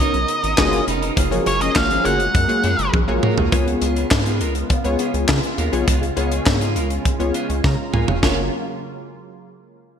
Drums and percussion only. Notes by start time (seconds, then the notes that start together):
0.14 closed hi-hat
0.28 closed hi-hat
0.44 closed hi-hat
0.58 kick, snare, clap
0.73 closed hi-hat
0.88 closed hi-hat
1.03 closed hi-hat
1.17 kick, closed hi-hat
1.32 closed hi-hat
1.46 closed hi-hat
1.61 closed hi-hat
1.76 kick, snare, clap
1.91 closed hi-hat
2.05 closed hi-hat
2.20 closed hi-hat
2.35 kick, closed hi-hat
2.49 closed hi-hat
2.64 closed hi-hat
2.79 closed hi-hat
2.94 kick, high tom
3.23 mid tom
3.38 floor tom
3.52 kick, closed hi-hat
3.68 closed hi-hat
3.82 closed hi-hat
3.96 closed hi-hat
4.11 kick, snare, clap
4.26 closed hi-hat
4.41 closed hi-hat
4.55 closed hi-hat
4.70 kick, closed hi-hat
4.85 closed hi-hat
4.99 closed hi-hat
5.14 closed hi-hat
5.28 kick, snare, clap
5.43 closed hi-hat
5.58 closed hi-hat
5.73 closed hi-hat
5.88 kick, closed hi-hat
6.03 closed hi-hat
6.17 closed hi-hat
6.32 closed hi-hat
6.46 kick, snare, clap
6.61 closed hi-hat
6.76 closed hi-hat
6.90 closed hi-hat
7.05 kick, closed hi-hat
7.20 closed hi-hat
7.34 closed hi-hat
7.50 closed hi-hat
7.64 kick, snare
7.94 mid tom
8.08 floor tom
8.23 kick, snare, crash